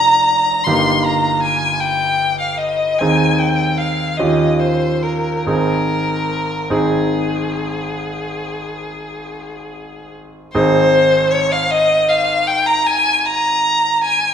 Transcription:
Already playing: F1 A#3 D4 G#4 A#5
0.64 G1 A#3 D#4 G4 C6
1.04 A#5
1.43 G#5
1.80 G5
2.40 F5
2.58 D#5
2.99 D#2 C4 D#4 G#4 G#5
3.38 G5
3.77 F5
4.17 D#2 C#4 F4 G4 D#5
4.60 C5
5.03 A#4
5.45 G#1 C4 D#4 G#4 A#4
6.70 G#1 C4 D#4 G#4
10.53 G#1 C4 D#4 G#4 C5
11.31 C#5
11.52 F5
11.71 D#5
12.08 F5
12.47 G5
12.66 A#5
12.87 G#5
13.25 A#5
14.04 G#5

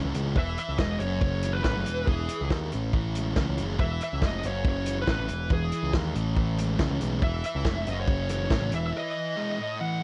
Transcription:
Already playing: A2 E3 G#3 C#4
0.04 C#2
0.14 C#2 G#3, closed hi-hat
0.36 E1 E3 E5, kick
0.58 E5, closed hi-hat
0.69 C#2
0.78 E1 G#3 D#5, kick, snare
1.00 F#1 F#2 C#5, closed hi-hat
1.21 C#3 C#5, kick
1.43 E3, closed hi-hat
1.53 B4
1.64 A1 A3 B4, kick, snare
1.76 F#1
1.86 E1 E3, closed hi-hat
2.07 E1 E3 G#4, kick
2.28 closed hi-hat
2.41 C#2
2.50 D#2 G#3, kick, snare
2.72 A1 A2, closed hi-hat
2.93 E3, kick
3.15 G#3, closed hi-hat
3.36 C#2 C#4, kick, snare
3.49 C#2
3.58 F#1 G#3, closed hi-hat
3.79 E1 E3 E5, kick
4.01 E5, closed hi-hat
4.13 C#2
4.22 F1 G#3 D#5, kick, snare
4.43 F#1 F#2 C#5, closed hi-hat
4.65 C#3, kick
4.69 C#5
4.86 E3, closed hi-hat
5.02 B4
5.07 A1 A3 B4, kick, snare
5.19 A1
5.28 E1 E3, closed hi-hat
5.50 E1 E3 G#4, kick
5.72 closed hi-hat
5.83 C#2
5.93 D#2 G#3, kick, snare
6.15 A1 A2, closed hi-hat
6.36 E3, kick
6.58 G#3, closed hi-hat
6.79 C#2 C#4, kick, snare
6.90 C#2
7.00 B1 G#3, closed hi-hat
7.22 E1 E3 E5, kick
7.44 E5, closed hi-hat
7.55 C#2
7.65 F1 G#3, kick, snare
7.86 F#1 F#2 D#5, closed hi-hat
8.00 C#5
8.08 C#3, kick
8.29 E3 C#5, closed hi-hat
8.50 A1 A3, kick, snare
8.61 A1
8.71 E1 E3 E5, closed hi-hat
8.87 E5
8.93 E3
8.97 D#5
9.37 G#3
9.58 A2
9.80 E3 F#5

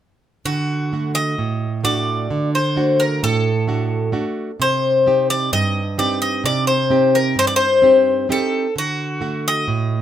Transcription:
0.45 D3 F#4
0.93 A3 F#4
1.15 D#5
1.38 A2
1.84 A3 D4 F#4 D5
2.31 D3
2.55 C5
2.76 A3 D4 F#4
3.00 A#4
3.23 A2 A4
3.67 A3 D4 F#4
4.12 A3 D4 F#4
4.60 C3 C5
5.06 C4 D#4 G4
5.30 D5
5.53 G2 D#5
5.98 C4 D#4 G4 D5
6.22 D#5
6.44 C3 D5
6.67 C5
6.90 C4 D#4 G4
7.15 A#4
7.36 G2 C5
7.47 D5
7.56 C5
7.82 C4 D#4 G4
8.29 C4 D#4 G4 A4
8.76 D3 F#4
9.21 A3 F#4
9.48 D#5
9.68 A2

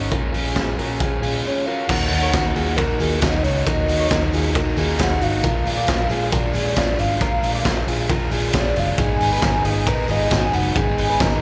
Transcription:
Already playing: A#3 C#4 F#4
0.12 A#1 A#2 F3 G#3 C#4 F4 A#4, kick, closed hi-hat
0.33 A#1 G#3 C#4 F4, open hi-hat
0.45 F4 G#4
0.56 A#1 A#2 F3 G#3 C#4 F4 G#4, kick, snare, closed hi-hat
0.78 A#1 G#3 C#4 F4 F#4 A#4, open hi-hat
1.00 F3 G#3 C#4 F4 G#4, kick, closed hi-hat
1.22 A#1 G#3 C#4 F4 G#4, open hi-hat
1.45 A#2 F3 G#3 C#4 F4 C#5
1.66 C#4 F4 F#4 A#4 F5
1.70 G#3
1.88 D#2 D#3 A#3 D#4 F#4 A#4 F#5, kick, crash, tambourine
2.10 D#2 A#3 D#4 F#4, open hi-hat, tambourine
2.23 A#4 C#5
2.33 D#2 D#3 A#3 D#4 F#4 A#4, kick, snare, hi-hat pedal, ride, tambourine
2.55 D#2 A#3 D#4 F4 F#4 G#4, open hi-hat, tambourine
2.76 D#3 A#3 D#4 F#4 A#4, kick, hi-hat pedal, ride
2.98 D#2 D#4 F4 F#4 G#4 A#4, open hi-hat, tambourine
3.03 A#3
3.21 D#2 D#3 A#3 D#4 F#4 D#5, kick, snare, hi-hat pedal, ride, tambourine
3.43 C#2 A#3 D#4 F#4 C#5, open hi-hat, tambourine
3.66 D#2 D#3 A#3 D#4 F#4 A#4 D#5, kick, hi-hat pedal, ride, tambourine
3.88 D#2 A#3 D#4 F#4, open hi-hat, tambourine
4.00 A#4 C#5
4.11 D#2 D#3 A#3 D#4 F#4 A#4, kick, snare, hi-hat pedal, ride, tambourine
4.33 D#2 A#3 D#4 F4 F#4 G#4, open hi-hat, tambourine
4.55 D#3 A#3 D#4 F#4 A#4, kick, hi-hat pedal, ride, tambourine
4.77 D#2 A#3 D#4 F4 F#4 G#4, open hi-hat, tambourine
4.99 D#2 D#3 A#3 D#4 F#4 F#5, kick, snare, hi-hat pedal, ride, tambourine
5.21 G#1 A#3 D#4 F#4 F5, open hi-hat, tambourine
5.44 A#1 A#2 F3 G#3 D4 F4 A#4, kick, hi-hat pedal, ride, tambourine
5.65 A#1 G#3 D4 F4, open hi-hat, tambourine
5.77 A#4 D5
5.87 A#1 F3 G#3 D4 F4 A#4, kick, snare, hi-hat pedal, ride, tambourine
6.09 A#1 G#3 D4 F4 G#4, open hi-hat, tambourine
6.32 A#2 F3 G#3 D4 F4 A#4 D5, kick, hi-hat pedal, ride, tambourine
6.54 A#1 G#3 D4 F4 G#4, open hi-hat, tambourine
6.75 A#1 F3 G#3 D4 F4 D5, kick, snare, hi-hat pedal, ride, tambourine
6.97 G#1 G#3 D4 F4 F5, open hi-hat, tambourine
7.21 A#1 A#2 F3 G#3 D4 F4 A#4, kick, hi-hat pedal, ride, tambourine
7.43 A#1 G#3 D4 F4, open hi-hat, tambourine
7.55 A#4 D5
7.65 A#1 F3 G#3 D4 F4 A#4, kick, snare, hi-hat pedal, ride, tambourine
7.87 A#1 G#3 D4 F4 G#4, open hi-hat, tambourine
8.10 A#2 F3 G#3 D4 F4 A#4, kick, hi-hat pedal, ride, tambourine
8.31 A#1 G#3 D4 F4 G#4, open hi-hat, tambourine
8.53 A#1 F3 G#3 D4 F4, kick, snare, hi-hat pedal, ride, tambourine
8.58 D5
8.75 F#1 D4 F4, open hi-hat, tambourine
8.79 G#3 F5
8.98 G#1 G#2 D#3 G#3 B3 D#4 G#4 G#5, kick, hi-hat pedal, ride, tambourine
9.20 G#1 G#3 B3 D#4, open hi-hat, tambourine
9.33 G#4 B4
9.42 G#1 D#3 G#3 B3 D#4 A#4, kick, snare, hi-hat pedal, ride, tambourine
9.64 G#1 G#3 B3 D#4 F4 G#4, open hi-hat, tambourine
9.86 G#2 D#3 G#3 B3 D#4 A#4 B4, kick, hi-hat pedal, ride, tambourine
10.08 G#1 G#3 B3 D#4 F4 G#4 D#5, open hi-hat, tambourine
10.30 G#1 D#3 G#3 B3 D#4 F#4 G#5, kick, snare, hi-hat pedal, ride, tambourine
10.52 F#1 G#3 B3 D#4 F#5, open hi-hat, tambourine
10.75 G#1 G#2 D#3 G#3 B3 D#4 G#4 G#5, kick, hi-hat pedal, ride, tambourine
10.97 G#1 G#3 B3 D#4, open hi-hat, tambourine
11.10 G#4 B4
11.19 G#1 D#3 G#3 B3 D#4 A#4, kick, snare, hi-hat pedal, ride, tambourine

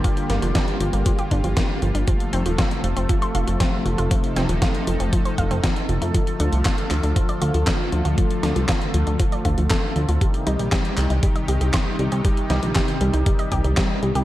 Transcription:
Already playing: D3 G3 A#3 F4 G4
0.04 F3, kick, closed hi-hat
0.17 closed hi-hat
0.30 G1 A#3, snare, closed hi-hat
0.42 F1 F3, closed hi-hat
0.55 D4, kick, snare, closed hi-hat
0.68 closed hi-hat
0.80 G1 F3, closed hi-hat
0.93 G1 A#3, closed hi-hat
1.06 F3, kick, closed hi-hat
1.19 G4, closed hi-hat
1.31 G1 D4, kick, closed hi-hat
1.44 G1 F3, closed hi-hat
1.57 A#3, kick, snare, closed hi-hat
1.82 G1 F3, closed hi-hat
1.95 G1 D4, closed hi-hat
2.08 C3 F3 A3 A4, kick, closed hi-hat
2.20 closed hi-hat
2.33 F1 C4, closed hi-hat
2.46 D#1 F3, closed hi-hat
2.58 F4, kick, snare, closed hi-hat
2.71 closed hi-hat
2.84 F1 F3, closed hi-hat
2.97 F1 C4, closed hi-hat
3.09 F3, kick, closed hi-hat
3.22 C5, closed hi-hat
3.35 F1 F4, closed hi-hat
3.47 F1 F3, closed hi-hat
3.60 C4, kick, snare, closed hi-hat
3.86 F1 F3, closed hi-hat
3.98 F1 F4, closed hi-hat
4.11 F3 D#4, kick, closed hi-hat
4.24 closed hi-hat
4.36 F1 C4, snare, closed hi-hat
4.49 D#1 F3, closed hi-hat
4.62 F4, kick, snare, closed hi-hat
4.75 closed hi-hat
4.87 F1 F3, closed hi-hat
5.00 F1 C4, closed hi-hat
5.13 F3, kick, closed hi-hat
5.25 C5, closed hi-hat
5.38 F1 F5, kick, closed hi-hat
5.51 F1 C4, closed hi-hat
5.64 F3, kick, snare, closed hi-hat
5.76 closed hi-hat
5.89 F1 F3, closed hi-hat
6.02 F2 A3, closed hi-hat
6.14 D3 F3 A3 F4, kick, closed hi-hat
6.27 closed hi-hat
6.40 D2 D4, closed hi-hat
6.53 C2 F3, closed hi-hat
6.65 F4, kick, snare, clap, closed hi-hat
6.78 closed hi-hat
6.91 D2 F3, clap, closed hi-hat
7.03 D2 D4, closed hi-hat
7.16 F3, kick, closed hi-hat
7.29 D5, closed hi-hat
7.42 D2 F4, closed hi-hat
7.54 D2 F3, closed hi-hat
7.67 A4, kick, snare, clap, closed hi-hat
7.92 D2 F3, closed hi-hat
8.05 D2 F4, closed hi-hat
8.18 F3, kick, closed hi-hat
8.31 closed hi-hat
8.43 D2 D4, snare, closed hi-hat
8.56 C2 F3, closed hi-hat
8.69 F4, kick, snare, clap, closed hi-hat
8.81 closed hi-hat
8.94 D2 F3, closed hi-hat
9.07 D2 D4, closed hi-hat
9.20 F3, kick, closed hi-hat
9.32 D5, closed hi-hat
9.45 D2 F4, kick, closed hi-hat
9.58 D2 F3, closed hi-hat
9.70 A4, kick, snare, clap, closed hi-hat
9.96 D2 F3, closed hi-hat
10.09 D2 F4, closed hi-hat
10.21 C3 D#3 G3 D#4 G4, kick, closed hi-hat
10.34 closed hi-hat
10.47 C2 D#4, closed hi-hat
10.59 A#1 G3, closed hi-hat
10.72 G4, kick, snare, clap, closed hi-hat
10.85 closed hi-hat
10.97 C2 G3, clap, closed hi-hat
11.10 C2 D#4, closed hi-hat
11.23 G3, kick, closed hi-hat
11.36 D#5, closed hi-hat
11.48 C2 G4, closed hi-hat
11.61 C2 G3, closed hi-hat
11.74 C5, kick, snare, clap, closed hi-hat
11.99 C2 G3, closed hi-hat
12.12 C2 G4, closed hi-hat
12.25 G3, kick, closed hi-hat
12.37 closed hi-hat
12.50 C2 D#4, snare, closed hi-hat
12.63 A#1 G3, closed hi-hat
12.75 G4, kick, snare, clap, closed hi-hat
12.88 closed hi-hat
13.01 C2 G3, closed hi-hat
13.14 C2 D#4, closed hi-hat
13.26 G3, kick, closed hi-hat
13.39 D#5, closed hi-hat
13.52 C2 G4, kick, closed hi-hat
13.64 C2 G3, closed hi-hat
13.77 G3, kick, snare, clap, closed hi-hat
14.03 C2 G3, closed hi-hat
14.15 C2 G4, closed hi-hat

